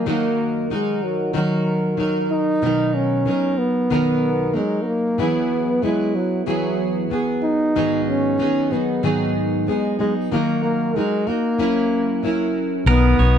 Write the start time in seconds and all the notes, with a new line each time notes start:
0.06 D#3 F#3 A#3 D#4 F#4 A#4
0.70 F#3 G#3 D#4 F#4 A#4
1.04 F#3
1.33 D#3 F#3 D#4 F#4 A#4
1.97 F#3 D#4 F#4 A#4
2.31 D#4
2.62 B2 D#3 F#3 B3 D#4 A#4
2.94 C#4
3.25 F#3 B3 D#4 A#4
3.58 B3
3.90 B2 D#3 F#3 B3 D#4 A#4
4.53 F#3 G#3 D#4 A#4
4.82 B3
4.87 A#3
5.18 E3 F#3 B3 E4 G#4
5.82 F#3 G#3 B3 E4 G#4
6.15 F#3
6.46 E3 F#3 B3 E4 G#4
7.10 F#3 B3 G#4
7.43 D#4
7.75 G#2 D#3 F#3 B3 D#4 G#4
8.04 D#4
8.08 C#4
8.38 F#3 B3 D#4 G#4
8.71 F#3 B3 D#4 G#4
9.03 G#2 D#3 F#3 B3 D#4 G#4
9.67 F#3 G#3 B3 D#4 G#4
9.99 F#3 G#3 B3 D#4 G#4
10.32 D#3 F#3 A#3 D#4 F#4 A#4
10.64 A#3
10.96 F#3 G#3 D#4 F#4 A#4
11.27 A#3 D#4 F#4 A#4
11.58 F#3 C#4 E4 A#4
12.23 F#3 C#4 E4 A#4
12.86 B1 B2 D#3 F#3 B3 D#4 A#4 A#5 D#6
13.19 B1 F#3 B3 D#4 A#4 C#5